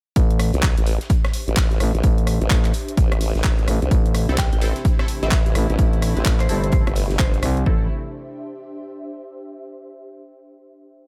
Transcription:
0.16 0.52 A1 loud
0.16 7.65 D4 medium
0.16 kick loud
0.16 closed hi-hat medium
0.31 7.66 C5 loud
0.31 7.66 E5 medium
0.31 closed hi-hat soft
0.39 7.66 G4 medium
0.39 cross-stick medium
0.39 closed hi-hat medium
0.39 open hi-hat loud
0.53 0.75 C2 loud
0.53 closed hi-hat soft
0.63 kick loud
0.63 snare loud
0.63 clap loud
0.63 closed hi-hat medium
0.77 0.99 A1 loud
0.77 closed hi-hat medium
0.86 closed hi-hat medium
0.86 open hi-hat medium
1.01 snare medium
1.01 closed hi-hat medium
1.10 kick loud
1.10 closed hi-hat medium
1.25 cross-stick medium
1.25 snare soft
1.25 closed hi-hat soft
1.33 closed hi-hat medium
1.33 open hi-hat loud
1.48 1.79 A1 loud
1.48 closed hi-hat soft
1.57 kick loud
1.57 snare loud
1.57 clap loud
1.57 closed hi-hat medium
1.71 closed hi-hat soft
1.80 1.92 A1 loud
1.80 cross-stick medium
1.80 closed hi-hat medium
1.80 open hi-hat loud
1.95 2.02 A1 medium
1.95 closed hi-hat soft
2.03 2.39 A1 loud
2.03 kick loud
2.03 closed hi-hat medium
2.18 closed hi-hat soft
2.27 cross-stick medium
2.27 closed hi-hat medium
2.27 open hi-hat loud
2.41 2.49 A1 loud
2.41 closed hi-hat soft
2.50 2.73 A1 loud
2.50 kick loud
2.50 snare loud
2.50 clap loud
2.50 closed hi-hat loud
2.50 closed hi-hat medium
2.65 clap soft
2.65 closed hi-hat medium
2.73 closed hi-hat medium
2.73 open hi-hat loud
2.88 closed hi-hat medium
2.97 3.33 A1 loud
2.97 kick loud
2.97 closed hi-hat medium
3.12 cross-stick medium
3.12 closed hi-hat soft
3.20 open hi-hat medium
3.20 open hi-hat loud
3.35 3.66 A1 medium
3.35 snare soft
3.35 closed hi-hat soft
3.44 kick loud
3.44 snare loud
3.44 clap loud
3.44 closed hi-hat medium
3.59 closed hi-hat soft
3.68 3.80 A1 loud
3.68 cross-stick medium
3.68 closed hi-hat medium
3.68 open hi-hat loud
3.82 3.90 C2 medium
3.82 closed hi-hat soft
3.91 4.27 A1 loud
3.91 7.62 C3 medium
3.91 7.62 E3 medium
3.91 7.62 A3 medium
3.91 7.62 E4 medium
3.91 kick loud
3.91 closed hi-hat medium
4.06 closed hi-hat soft
4.14 cross-stick medium
4.14 closed hi-hat medium
4.14 open hi-hat loud
4.29 4.50 C2 loud
4.29 4.37 C4 medium
4.29 4.37 E4 medium
4.29 4.37 A4 medium
4.29 closed hi-hat soft
4.38 4.47 G5 medium
4.38 kick loud
4.38 snare loud
4.38 clap loud
4.38 closed hi-hat medium
4.53 4.74 A1 loud
4.53 4.58 G5 medium
4.53 closed hi-hat medium
4.61 4.79 C4 loud
4.61 4.79 E4 medium
4.61 4.79 A4 loud
4.61 closed hi-hat medium
4.61 open hi-hat medium
4.76 snare soft
4.76 closed hi-hat medium
4.85 kick loud
4.85 closed hi-hat medium
4.99 5.07 C4 loud
4.99 5.07 E4 medium
4.99 5.07 A4 loud
4.99 cross-stick medium
4.99 snare soft
4.99 closed hi-hat soft
5.08 closed hi-hat medium
5.08 open hi-hat loud
5.23 5.54 A1 medium
5.23 5.30 C4 loud
5.23 5.30 E4 medium
5.23 5.30 A4 loud
5.23 5.39 E5 loud
5.23 closed hi-hat soft
5.31 kick loud
5.31 snare loud
5.31 clap loud
5.31 closed hi-hat medium
5.46 closed hi-hat soft
5.55 5.67 A1 loud
5.55 cross-stick medium
5.55 closed hi-hat medium
5.55 open hi-hat loud
5.70 5.77 A1 medium
5.70 closed hi-hat soft
5.78 6.14 A1 loud
5.78 kick loud
5.78 closed hi-hat medium
5.93 closed hi-hat soft
6.02 cross-stick medium
6.02 closed hi-hat medium
6.02 open hi-hat loud
6.17 6.24 A1 loud
6.17 6.24 C4 medium
6.17 6.24 E4 medium
6.17 6.24 B4 medium
6.17 closed hi-hat soft
6.25 6.48 A1 loud
6.25 kick loud
6.25 snare loud
6.25 clap loud
6.25 closed hi-hat medium
6.40 6.61 C5 medium
6.40 clap soft
6.40 closed hi-hat medium
6.49 6.85 G1 loud
6.49 6.66 C4 medium
6.49 6.67 E4 medium
6.49 6.67 A4 loud
6.49 closed hi-hat medium
6.49 open hi-hat loud
6.64 6.69 C5 medium
6.64 closed hi-hat soft
6.72 6.82 C5 medium
6.72 kick loud
6.72 closed hi-hat medium
6.87 7.18 G1 medium
6.87 cross-stick medium
6.87 closed hi-hat soft
6.95 open hi-hat medium
6.95 open hi-hat loud
7.10 snare soft
7.10 closed hi-hat soft
7.19 7.41 G1 loud
7.19 7.66 C5 medium
7.19 kick loud
7.19 snare loud
7.19 clap loud
7.19 closed hi-hat medium
7.34 closed hi-hat soft
7.42 7.65 C2 loud
7.42 cross-stick medium
7.42 closed hi-hat medium
7.42 open hi-hat loud
7.57 closed hi-hat soft
7.66 7.88 A1 loud
7.66 7.88 C3 medium
7.66 7.88 E3 medium
7.66 7.88 A3 medium
7.66 7.85 C4 medium
7.66 9.50 D4 medium
7.66 7.85 E4 medium
7.66 7.88 E4 medium
7.66 7.85 A4 medium
7.66 kick loud
7.75 9.50 G4 medium
7.82 9.50 C5 medium
7.88 9.50 E5 medium

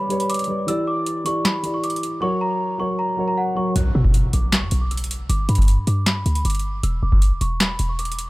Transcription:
0.00 0.09 G3 medium
0.00 0.10 G4 medium
0.00 0.11 B4 medium
0.00 0.12 C#5 medium
0.00 0.50 D5 loud
0.00 0.18 B5 medium
0.00 downlifter medium
0.09 0.35 G3 medium
0.09 0.35 G4 medium
0.09 0.36 B4 medium
0.09 0.36 C#5 medium
0.09 closed hi-hat medium
0.20 0.28 B5 medium
0.20 closed hi-hat medium
0.30 0.66 D6 medium
0.30 closed hi-hat medium
0.34 closed hi-hat medium
0.39 closed hi-hat medium
0.44 0.61 G3 medium
0.44 closed hi-hat soft
0.48 0.61 G4 medium
0.48 0.62 B4 medium
0.48 0.62 D5 medium
0.67 1.05 E3 loud
0.67 1.05 E4 medium
0.67 1.06 G4 medium
0.67 1.06 D5 loud
0.67 0.85 E6 loud
0.67 closed hi-hat medium
0.87 1.23 D6 medium
1.06 closed hi-hat medium
1.24 1.50 E3 medium
1.24 1.51 E4 medium
1.24 1.51 G4 medium
1.24 1.52 D5 medium
1.24 1.43 C#6 medium
1.24 closed hi-hat medium
1.45 1.72 B5 medium
1.45 snare loud
1.45 clap medium
1.45 closed hi-hat medium
1.63 2.01 E3 medium
1.63 2.02 E4 medium
1.63 2.02 G4 medium
1.63 2.03 D5 medium
1.63 closed hi-hat medium
1.74 1.82 C#6 medium
1.84 2.20 D6 medium
1.84 closed hi-hat medium
1.90 closed hi-hat medium
1.96 closed hi-hat medium
2.03 closed hi-hat medium
2.21 2.59 F#3 loud
2.21 2.59 F#4 medium
2.21 2.60 A#4 medium
2.21 2.60 C#5 loud
2.21 2.39 C#6 loud
2.41 2.77 A#5 medium
2.78 3.04 F#3 medium
2.78 3.05 F#4 medium
2.78 3.05 A#4 medium
2.78 3.06 C#5 medium
2.78 2.97 C#6 medium
2.99 3.26 A#5 medium
3.17 3.43 F#3 medium
3.17 3.43 F#4 medium
3.17 3.44 A#4 medium
3.17 3.44 C#5 medium
3.28 3.36 A#5 medium
3.38 3.55 F#5 medium
3.55 3.68 F#3 medium
3.55 3.69 F#4 medium
3.55 3.69 A#4 medium
3.55 3.70 C#5 medium
3.55 3.74 C#6 medium
3.76 3.94 B1 loud
3.76 3.93 F#6 loud
3.76 closed hi-hat medium
3.76 impact medium
3.95 4.32 B2 loud
3.95 4.31 E6 medium
4.05 kick loud
4.14 closed hi-hat medium
4.33 4.64 A#1 loud
4.33 4.51 D6 medium
4.33 closed hi-hat medium
4.52 4.80 C#6 medium
4.52 snare loud
4.52 clap medium
4.52 closed hi-hat medium
4.62 4.71 F#2 loud
4.71 5.27 B1 loud
4.71 closed hi-hat medium
4.81 4.90 D6 medium
4.91 5.27 E6 medium
4.91 closed hi-hat medium
4.97 closed hi-hat medium
5.04 closed hi-hat medium
5.11 closed hi-hat medium
5.29 5.48 G1 loud
5.29 5.47 D6 loud
5.29 closed hi-hat medium
5.49 5.86 G2 loud
5.49 5.85 B5 medium
5.49 closed hi-hat soft
5.49 open hi-hat medium
5.55 kick loud
5.55 closed hi-hat medium
5.62 closed hi-hat medium
5.68 closed hi-hat medium
5.87 6.24 G2 loud
5.87 6.05 D6 medium
5.87 closed hi-hat medium
6.06 6.34 B5 medium
6.06 snare loud
6.06 clap medium
6.06 closed hi-hat medium
6.26 6.44 D2 loud
6.26 closed hi-hat medium
6.35 6.44 B5 medium
6.35 closed hi-hat medium
6.45 6.82 G1 loud
6.45 6.81 D6 medium
6.45 closed hi-hat medium
6.50 closed hi-hat medium
6.55 closed hi-hat medium
6.59 closed hi-hat soft
6.83 7.02 E1 loud
6.83 7.01 E6 loud
6.83 closed hi-hat medium
7.03 7.40 E1 loud
7.03 7.39 D6 medium
7.12 kick loud
7.22 closed hi-hat medium
7.41 7.78 E1 loud
7.41 7.58 C#6 medium
7.41 closed hi-hat medium
7.60 7.87 B5 medium
7.60 snare loud
7.60 clap medium
7.60 closed hi-hat medium
7.79 8.30 E1 loud
7.79 closed hi-hat medium
7.89 7.98 C#6 medium
7.99 8.30 D6 medium
7.99 closed hi-hat medium
8.05 closed hi-hat medium
8.12 closed hi-hat medium
8.19 closed hi-hat medium

